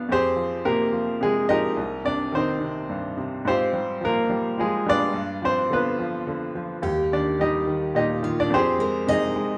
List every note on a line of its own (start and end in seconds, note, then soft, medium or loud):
0.09 1.73 F2 medium
0.09 0.62 C4 medium
0.09 0.62 G4 medium
0.09 0.62 G#4 medium
0.09 0.63 C5 loud
0.36 0.91 F3 soft
0.65 1.19 C3 medium
0.65 1.17 A#3 medium
0.65 1.17 G4 medium
0.65 1.17 A#4 medium
0.93 1.48 F3 soft
1.21 1.75 C3 medium
1.21 1.48 G#3 medium
1.21 1.50 G#4 medium
1.49 1.76 F3 medium
1.49 2.02 D#4 medium
1.49 2.02 G4 medium
1.49 2.02 A#4 medium
1.49 2.07 D#5 loud
1.77 3.41 C2 medium
2.05 2.59 C3 soft
2.05 2.32 D4 medium
2.05 2.34 D5 medium
2.32 3.41 D#3 medium
2.32 3.15 D#4 medium
2.32 3.14 C5 medium
2.37 3.15 C4 medium
2.61 3.16 C3 medium
2.89 3.44 G2 medium
3.17 3.44 C3 medium
3.45 5.09 G#2 medium
3.45 3.99 C4 medium
3.45 3.99 F4 medium
3.45 3.99 G4 medium
3.45 4.04 C5 medium
3.73 4.28 G3 soft
4.01 4.56 F3 medium
4.01 4.55 F4 medium
4.01 4.55 A#4 medium
4.05 4.55 A#3 medium
4.30 4.85 G3 medium
4.58 5.12 F3 medium
4.58 4.84 G#3 medium
4.58 4.88 G#4 medium
4.86 5.13 G3 medium
4.86 5.40 D4 medium
4.86 5.39 F4 medium
4.86 5.39 B4 medium
4.86 5.40 D5 loud
5.14 6.78 G2 medium
5.42 5.98 F3 soft
5.42 5.69 C4 medium
5.42 5.70 C5 medium
5.70 6.26 D3 medium
5.70 6.51 B3 medium
5.70 6.52 F4 medium
5.70 6.52 B4 medium
5.99 6.54 F3 medium
6.27 6.81 D3 medium
6.55 6.82 F3 medium
6.82 8.47 D#2 medium
6.82 8.09 G4 medium
7.12 7.66 D#3 medium
7.12 7.38 D4 medium
7.12 7.41 D5 medium
7.39 8.48 G3 soft
7.39 7.92 D#4 medium
7.39 7.92 G4 medium
7.39 7.95 D#5 medium
7.67 8.21 D#3 soft
7.95 8.49 A#2 medium
7.95 8.35 D#4 medium
7.95 8.35 G4 medium
7.95 8.35 D#5 medium
8.22 8.50 D#3 medium
8.22 8.76 F4 soft
8.40 8.52 D4 medium
8.40 8.53 D5 medium
8.50 9.58 F2 medium
8.50 9.05 C4 medium
8.50 9.10 C5 loud
8.55 9.05 G4 medium
8.55 9.05 G#4 medium
8.79 9.34 G#3 medium
8.79 9.58 A#4 medium
9.07 9.58 C3 medium
9.07 9.58 D#4 medium
9.07 9.58 G#4 medium
9.07 9.58 D#5 medium
9.07 9.58 D#5 loud
9.36 9.58 G#3 medium